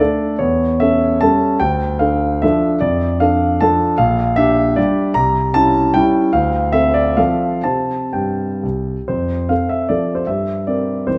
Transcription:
0.00 A3 D4 A4 D5
0.39 E2 C#5
0.80 C#4 A4 E5
1.21 G3 C#4 A4 A5
1.60 D2 G5
1.99 D4 A4 F5
2.42 F3 D4 A4 E5
2.81 F2 D5
3.20 D4 A4 F5
3.61 F3 D4 A4 A5
3.98 A#1 F5
4.36 D4 G4 E5
4.76 G3 D4 G4 D5
5.14 C2 A#5
5.54 C#4 E4 A5
5.94 G3 C#4 E4 G5
6.33 D2 F5
6.72 C4 A4 E5
6.94 D5
7.17 F3 C4 A4 F5
7.64 C3 C4 C5 A5
8.13 G2 G5
8.63 C2
9.08 F2 C5
9.49 C4 A4 F5
9.69 E5
9.89 F3 C4 A4 D5
10.15 C5
10.27 G2 E5
10.67 C4 A#4 D5
11.07 E3 C4 A#4 C5

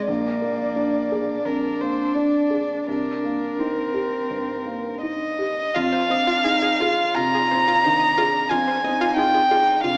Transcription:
Already playing: C3 G#3 D#4 G#4
0.08 A#1 A#3 D5
0.42 A#3
0.76 D4
1.12 G#4
1.45 F2 D4 A#4
1.81 A#3 C5
2.14 D4 D5
2.50 G#4
2.87 C2 D4 A#4
3.24 A#3
3.59 C4 D#4
3.94 G4
4.30 G2
4.65 A#3
5.02 D#4 D#5
5.39 G4
5.75 F2 F4 F5
5.92 C5
6.10 C4 D4 D#5
6.27 F4
6.44 D#4 G#4
6.62 G#4
6.80 F4 G#4
7.14 C3 F4 A#5
7.35 G#4
7.51 C4 C5
7.68 F4
7.84 D#3 D4 C5
8.00 D#5
8.18 F4 G#4
8.49 F2 C4 F4 G#5
8.68 C5
8.84 C4 D#4 D#5
9.01 F4
9.16 D#4 F4 G#4 G5
9.34 G#4
9.48 D#4 F4 G#4
9.83 C3 D4 F4 F5

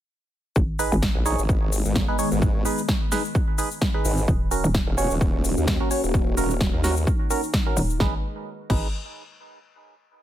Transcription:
0.56 G#1 D#3 G#3 B3, kick, shaker
0.79 D#4 G#4 B4, open hi-hat, shaker
0.92 G#1, shaker
1.02 kick, snare, shaker
1.15 A#1
1.26 D#4 G#4 C#5, open hi-hat, shaker
1.39 G#1, shaker
1.49 kick, shaker
1.72 open hi-hat, shaker
1.85 G#1, shaker
1.96 kick, snare, shaker
2.08 D#4 G#4 B4
2.19 D#4 G#4 C#5, open hi-hat, shaker
2.32 G#1, shaker
2.42 kick, shaker
2.65 D#4 G#4 B4, open hi-hat, shaker
2.78 shaker
2.89 kick, snare, shaker
3.12 D#4 G#4 B4, snare, open hi-hat, shaker
3.25 shaker
3.35 kick, shaker
3.58 D#4 G#4 B4, open hi-hat, shaker
3.71 shaker
3.82 kick, snare, shaker
3.94 D#4 G#4 B4
4.05 G#1, open hi-hat, shaker
4.18 shaker
4.28 D#1 A#3 C#4 F#4, kick, shaker
4.51 C#4 F#4 A#4, open hi-hat, shaker
4.64 D#1, shaker
4.75 kick, snare, shaker
4.87 E1
4.98 C#4 F#4 C#5, open hi-hat, shaker
5.11 D#1, shaker
5.21 kick, shaker
5.44 open hi-hat, shaker
5.57 D#2, shaker
5.68 kick, snare, shaker
5.80 C#4 F#4 A#4
5.91 C#4 F#4 C#5, open hi-hat, shaker
6.04 D#1, shaker
6.14 D#4, kick, shaker
6.37 D#1 C#4 F#4 A#4, open hi-hat, shaker
6.50 shaker
6.61 kick, snare, shaker
6.74 D#2
6.84 C#4 F#4 A#4, snare, open hi-hat, shaker
6.97 shaker
7.07 kick, shaker
7.30 C#4 F#4 A#4, open hi-hat, shaker
7.43 shaker
7.54 kick, snare, shaker
7.66 C#4 F#4 A#4
7.77 D#1, open hi-hat, shaker
7.90 shaker
8.00 G#1 G#3 D#4 G#4 B4 D#5, kick, snare
8.70 G#1 D#4 G#4 B4, kick, crash

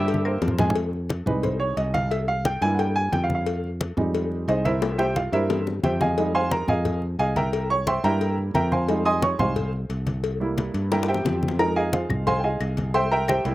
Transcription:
Already playing: G2 G3 G4 E5 G5
0.08 cowbell
0.14 high conga
0.25 A#3 A#4 C5, claves
0.42 F2, cowbell, low bongo
0.48 low conga
0.58 G#3 G#4 G#5, low bongo, low conga
0.70 low conga
0.75 cowbell
0.93 high conga
1.09 cowbell, high conga
1.26 C2 G3 G#3 D#4 B4, high conga, low conga
1.43 C5, cowbell, high conga, low conga
1.60 C#5, high conga
1.77 C2 D#5, cowbell, high conga
1.94 F5, cowbell, high conga
2.11 E5, cowbell, high conga
2.28 F5, high conga
2.45 G5, cowbell, high conga
2.61 G2 G3 A#3 E4 G#5, cowbell
2.74 F#5
2.79 G5, cowbell, high conga
2.96 G#5, high conga
3.12 F2 G5, cowbell, high conga
3.24 F5
3.30 high conga
3.35 F5
3.46 cowbell, high conga
3.64 high conga
3.81 cowbell, high conga
3.97 F2 G3 G#3 D#4, high conga, low conga
4.14 cowbell, high conga
4.32 high conga
4.48 C2 D#4 G#4 C5 D#5, cowbell, high conga
4.65 E4 A#4 C5 E5, cowbell, high conga
4.82 cowbell, high bongo
4.98 G4 C5 E5 G5, high bongo, high conga
5.16 F4 F5, cowbell, high conga
5.32 G2 G3 A#3 E4 A#4 C5 E5, cowbell
5.50 cowbell, low bongo, high conga
5.67 low bongo, high conga
5.83 F2 G4 C5 E5 G5, cowbell, low bongo, high conga
6.01 G#4 D#5 F5 G#5, low bongo, high conga
6.17 G3 G#3 D#4, cowbell, high conga
6.35 C5 F5 G#5 C6, high conga
6.51 A#4 A#5, cowbell, high conga
6.68 F2 G#4 D#5 F5 G#5, high conga, low conga
6.85 cowbell, high conga, low conga
7.02 high conga
7.19 C2 G#4 D#5 F5 G#5, cowbell, high conga
7.36 A#4 E5 G5 A#5, cowbell, high conga
7.53 cowbell, high conga
7.70 C#5 C#6, high conga
7.87 C5 E5 G5 C6, cowbell, high conga
8.04 G2 G3 A#3 E4 A#4 E5 G5 A#5, cowbell
8.21 cowbell, high conga
8.38 high conga
8.54 F2 A#4 E5 G5 A#5, cowbell, high conga
8.72 C5 F5 G#5 C6, high conga
8.88 G3 G#3 D#4, cowbell, high conga
9.05 D#5 G#5 C6 D#6, high conga
9.22 C#5 C#6, cowbell, high conga
9.39 C2 G3 G#3 D#4 C5 F5 G#5 C6, high conga, low conga
9.56 cowbell, high conga, low conga
9.73 high conga
9.89 C2, cowbell, high conga
10.07 cowbell, high conga
10.24 cowbell, high conga
10.40 G3 A#3 E4, high conga
10.58 cowbell, high conga
10.74 G2, cowbell
10.91 G3 A#3 E4 A#4 E5 G5 A#5, cowbell, high bongo, high conga
11.03 high bongo
11.08 G4 C5 E5 G5, high conga
11.14 low bongo
11.25 F2, cowbell, low bongo, high conga
11.43 high conga
11.48 low bongo
11.59 F3 G#3 D#4 A#4 A#5, cowbell, high conga, claves
11.76 G#4 D#5 F5 G#5, high conga
11.93 F4 G#4 C5 F5, cowbell, high conga
12.09 C2, high conga, low conga, claves
12.27 C5 F5 G#5 C6, cowbell, high conga, low conga
12.39 G5
12.44 G#4 D#5 F5 G#5, high conga
12.60 C2, cowbell, high conga, claves
12.77 cowbell, high conga
12.94 C5 E5 G5 C6, cowbell, high conga
13.11 A#4 E5 G5 A#5, high conga
13.28 G4 C5 E5 G5, cowbell, high conga, claves
13.45 C2 G3 A#3 E4, cowbell

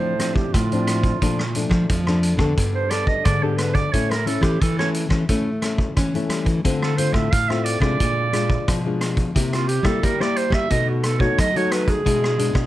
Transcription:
Already playing: A2 F3 C4 D4 C5
0.19 F3 C4 D4, cross-stick, closed hi-hat
0.35 G4, kick
0.53 A2 F4, kick, cross-stick, closed hi-hat
0.72 F3 C4 D4, closed hi-hat
0.87 cross-stick, closed hi-hat
1.03 kick, closed hi-hat
1.22 A#2 F3 A3 D4, kick, closed hi-hat
1.39 cross-stick
1.55 F3 A3 D4, closed hi-hat
1.69 F3, kick, cross-stick
1.89 F2 F3, kick, closed hi-hat
2.07 F3 A3 D4, cross-stick
2.23 closed hi-hat
2.37 D3 B3 D4 A4, kick, cross-stick
2.57 G2 G3, kick, closed hi-hat
2.75 C5
2.90 B3 D4 A4 D5, cross-stick, closed hi-hat
3.07 D#5, kick
3.24 G#2 D3 D5, kick, cross-stick, closed hi-hat
3.42 B3 D4 G4 A4
3.57 B4, cross-stick, closed hi-hat
3.74 D5, kick, closed hi-hat
3.92 A2 A3 C#4 E4 C#5, kick, closed hi-hat
4.11 A#4, cross-stick, closed hi-hat
4.26 A3 C#4 E4 A4, closed hi-hat
4.41 E3 G4, kick, cross-stick, closed hi-hat
4.61 E3 A4, kick, closed hi-hat
4.79 A3 C#4 E4 C#5, cross-stick
4.94 closed hi-hat
5.09 E3 A3 C#4 E4, kick, cross-stick
5.29 A2 A3 C#4 E4, kick, closed hi-hat
5.62 A3 C#4 E4, cross-stick, closed hi-hat
5.78 kick
5.97 E3 C#4, kick, cross-stick, closed hi-hat
6.14 A3 C#4 E4, closed hi-hat
6.29 G3, cross-stick, closed hi-hat
6.45 E3, kick, closed hi-hat
6.65 D3 A3 C4 F4, kick, closed hi-hat
6.83 A4, cross-stick
6.97 A3 C4 F4 C5, closed hi-hat
7.13 A2 E5, kick, cross-stick
7.32 A2 F5, kick, closed hi-hat
7.49 A3 C4 F4 E5, cross-stick
7.64 D5, closed hi-hat
7.80 C3 G#3 D4 F4 D5, kick, cross-stick
8.00 A#2, kick, closed hi-hat
8.33 G#3 D4 F4, cross-stick, closed hi-hat
8.50 kick
8.68 B2 F3, kick, cross-stick, closed hi-hat
8.86 G#3 D4 F4
9.01 cross-stick, closed hi-hat
9.17 kick, closed hi-hat
9.35 C3 A#3 E4 G4, kick, closed hi-hat
9.53 F4, cross-stick, closed hi-hat
9.68 G4, closed hi-hat
9.83 G3 A#3 E4 G4 A4, kick, cross-stick, closed hi-hat
10.03 G3 A#4, kick, closed hi-hat
10.20 A#3 E4 G4 D5, cross-stick
10.36 C5, closed hi-hat
10.50 G3 E5, kick, cross-stick
10.70 B2 A3 D#4 F#4 D#5, kick, closed hi-hat
10.89 F#4
11.04 A4, cross-stick, closed hi-hat
11.20 A3 D#4 F#4 C#5, kick
11.38 F#3 D#5, kick, cross-stick, closed hi-hat
11.56 A3 D#4 F#4 C#5, closed hi-hat
11.72 B4, cross-stick, closed hi-hat
11.88 G#4, kick, closed hi-hat
12.05 B2 G#3 D4 E4, kick, closed hi-hat
12.24 cross-stick
12.38 G#3 D4 E4, closed hi-hat
12.53 B2, kick, cross-stick

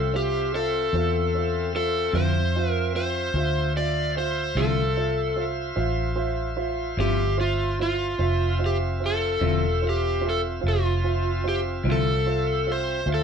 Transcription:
Already playing: C2 C4 F4 A4 E5
0.13 F4 G4 C5 E5
0.54 F4 A4 C5 E5
0.93 E2 F4 C5 E5
1.35 F4 C5 E5
1.75 F4 A4 C5 E5
2.12 F2 D3 F3 C4 E4 F4 C5 E5
2.56 F4 C5 E5
2.70 A#4
2.95 F4 C5 E5
3.33 D2 F4 C5 E5
3.76 F4 C5 D5 E5
4.16 F4 C5 E5
4.55 C2 D3 F3 C4 E4 F4 A4 C5 E5
4.97 F4 C5 E5
5.36 F4 C5 E5
5.76 A1 F4 C5 E5
6.15 F4 C5 E5
6.56 F4 C5 E5
6.97 G1 D3 F3 C4 E4 F4 G4 C5 E5
7.37 F4 C5 E5
7.79 F4 C5 E5
8.17 F1 C4 F4 C5 E5
8.59 F4 C5 E5
8.66 G4
9.00 F4 C5 E5
9.06 A4
9.39 E1 D3 F3 C4 E4 F4 C5 E5
9.82 F4 C5 E5
9.89 G4
10.21 F4 C5 E5
10.29 A4
10.61 F1 F4 C5 E5
10.68 F4
11.03 F4 C5 E5
11.44 F4 C5 E5
11.49 G4
11.83 C2 D3 F3 C4 E4 F4 C5 E5
11.92 A4
12.26 F4 C5 E5
12.67 F4 C5 E5
12.72 C5
13.06 D2 F4 C5 E5
13.14 A4

